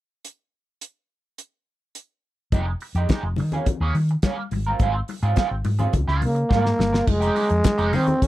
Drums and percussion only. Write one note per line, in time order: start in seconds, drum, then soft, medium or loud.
0.25 closed hi-hat medium
0.81 closed hi-hat medium
1.38 closed hi-hat medium
1.95 closed hi-hat medium
2.52 kick medium
2.52 closed hi-hat medium
2.52 muted conga soft
2.80 open hi-hat medium
2.95 closed hi-hat soft
3.09 kick loud
3.09 snare loud
3.09 closed hi-hat medium
3.09 high conga medium
3.36 open hi-hat medium
3.36 muted conga medium
3.52 closed hi-hat soft
3.52 low conga medium
3.66 kick loud
3.66 closed hi-hat medium
3.66 low conga medium
3.95 open hi-hat medium
3.95 muted conga soft
4.09 closed hi-hat soft
4.22 kick loud
4.22 snare loud
4.22 closed hi-hat medium
4.22 high conga medium
4.51 open hi-hat medium
4.51 high conga medium
4.65 closed hi-hat soft
4.79 kick loud
4.79 closed hi-hat medium
4.79 muted conga soft
5.08 open hi-hat medium
5.08 muted conga soft
5.23 closed hi-hat soft
5.36 kick loud
5.36 snare loud
5.36 closed hi-hat medium
5.36 high conga medium
5.65 open hi-hat medium
5.65 muted conga medium
5.79 closed hi-hat soft
5.79 low conga medium
5.93 kick loud
5.93 closed hi-hat medium
5.93 low conga medium
6.08 snare soft
6.22 open hi-hat medium
6.22 muted conga soft
6.36 closed hi-hat medium
6.51 kick loud
6.51 snare medium
6.51 high conga medium
6.66 snare medium
6.79 snare medium
6.79 high conga medium
6.94 snare medium
7.07 kick loud
7.07 crash medium
7.07 muted conga medium
7.22 closed hi-hat medium
7.36 open hi-hat medium
7.36 muted conga soft
7.50 closed hi-hat soft
7.64 kick loud
7.64 snare loud
7.64 clap loud
7.64 closed hi-hat medium
7.64 high conga medium
7.78 closed hi-hat soft
7.93 open hi-hat medium
7.93 muted conga medium
8.07 closed hi-hat soft
8.07 low conga medium
8.22 kick loud
8.22 closed hi-hat medium
8.22 low conga medium